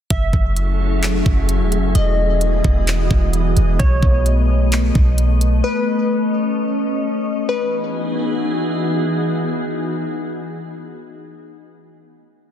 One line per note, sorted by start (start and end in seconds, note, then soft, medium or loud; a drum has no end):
0.10 0.33 F#1 loud
0.10 1.93 F#3 medium
0.10 1.93 A3 medium
0.10 1.93 C#4 medium
0.10 1.93 E4 medium
0.10 1.93 F#4 medium
0.10 3.76 G#4 medium
0.10 1.93 A4 medium
0.10 1.93 E5 medium
0.10 1.91 E5 loud
0.10 kick loud
0.10 closed hi-hat medium
0.33 1.22 F#1 loud
0.33 kick medium
0.56 closed hi-hat medium
1.03 clap loud
1.03 closed hi-hat medium
1.26 1.62 F#1 loud
1.26 kick loud
1.49 closed hi-hat medium
1.61 1.79 E1 loud
1.72 closed hi-hat medium
1.78 1.94 F#1 medium
1.95 2.61 E1 loud
1.95 3.78 E3 medium
1.95 3.78 G#3 medium
1.95 5.61 B3 medium
1.95 3.78 E4 medium
1.95 3.78 F#4 medium
1.95 7.45 D#5 medium
1.95 3.76 D#5 medium
1.95 3.78 D#5 medium
1.95 closed hi-hat medium
2.41 closed hi-hat medium
2.64 3.09 E1 loud
2.64 kick medium
2.87 clap loud
2.87 closed hi-hat medium
3.11 3.55 E1 loud
3.11 kick loud
3.33 closed hi-hat medium
3.57 3.79 E1 loud
3.57 closed hi-hat medium
3.79 4.02 B1 loud
3.79 7.45 A3 medium
3.79 5.60 C#5 medium
3.79 kick loud
3.79 closed hi-hat medium
4.03 4.91 B1 loud
4.03 kick medium
4.26 closed hi-hat medium
4.72 clap loud
4.72 closed hi-hat medium
4.95 5.62 B1 loud
4.95 kick loud
5.18 closed hi-hat medium
5.41 closed hi-hat medium
5.64 7.47 C#4 medium
5.64 7.45 B4 loud
7.49 10.96 E3 medium
7.49 10.96 B3 medium
7.49 10.96 D#4 medium
7.49 10.96 F#4 medium
7.49 10.96 G#4 medium
7.49 8.83 B4 medium